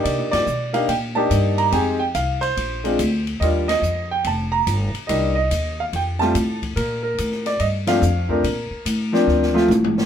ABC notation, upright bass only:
X:1
M:4/4
L:1/8
Q:"Swing" 1/4=143
K:Bb
V:1 name="Upright bass" clef=bass
(3C, B,, G,, _C,2 B,,2 G,,2 | F,,2 C,,2 B,,,2 D,,2 | E,,2 F,,2 F,,,2 G,,, z | C,,2 E,,2 F,,2 A,,2 |
B,,2 A,,2 G,,2 F,,2 | B,, z A,,2 D,,2 A,,,2 |]